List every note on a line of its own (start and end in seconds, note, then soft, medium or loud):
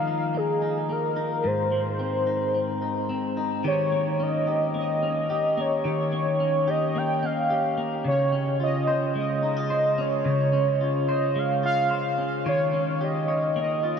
0.00 2.74 D#3 medium
0.00 1.50 F3 medium
0.00 0.33 A#3 medium
0.00 0.38 F5 medium
0.07 0.61 D#4 medium
0.34 0.88 A#3 medium
0.34 0.93 G#4 medium
0.62 1.16 D#4 medium
0.89 1.50 A#3 medium
0.89 1.48 A#4 medium
1.16 2.26 D#4 medium
1.44 3.64 G#2 medium
1.44 3.11 C5 medium
1.72 3.70 G#3 medium
1.99 2.53 C4 medium
2.27 2.82 D#4 medium
2.54 3.08 C4 medium
2.82 3.37 D#4 medium
3.09 3.70 C4 medium
3.37 3.64 D#4 medium
3.64 5.83 D#3 medium
3.64 4.46 G4 medium
3.64 4.24 C#5 medium
3.92 4.73 A#3 medium
4.20 5.02 C#4 medium
4.20 4.76 D#5 medium
4.47 5.29 G4 medium
4.75 5.56 A#3 medium
4.75 5.62 D#5 medium
5.03 6.40 C#4 medium
5.30 5.84 G4 medium
5.57 6.11 A#3 medium
5.57 6.71 C#5 loud
5.85 8.05 D#3 medium
5.85 6.66 G4 medium
6.13 6.94 A#3 medium
6.40 7.22 C#4 medium
6.68 7.49 G4 medium
6.68 6.99 D#5 loud
6.95 7.76 A#3 medium
6.95 7.27 G5 loud
7.23 8.32 C#4 medium
7.23 7.79 F5 medium
7.50 8.11 G4 medium
7.78 8.11 A#3 medium
8.05 10.24 C#3 medium
8.05 8.58 C#5 loud
8.32 9.98 C#4 medium
8.60 9.42 F4 medium
8.60 9.13 D#5 medium
8.87 9.69 C5 medium
9.15 11.34 G#3 medium
9.15 10.02 D#5 medium
9.43 9.57 D#4 medium
9.57 10.80 F4 medium
9.70 10.25 C5 medium
9.98 10.53 C#4 medium
9.98 11.12 C#5 loud
10.25 12.45 C#3 medium
10.53 12.18 C#4 medium
10.81 11.62 F4 medium
11.09 11.89 C5 medium
11.09 11.40 D#5 loud
11.36 12.51 G#3 medium
11.36 11.64 F5 loud
11.63 12.51 F4 medium
11.63 12.16 F5 medium
11.91 12.46 C5 medium
12.18 12.73 C#4 medium
12.46 14.00 D#3 medium
12.46 13.28 C#5 medium
12.46 13.05 C#5 loud
12.73 14.00 C#4 medium
13.01 13.83 G4 medium
13.01 13.57 D#5 medium
13.28 14.00 C#5 medium
13.56 14.00 A#3 medium
13.56 14.00 D#5 medium
13.83 13.97 F4 medium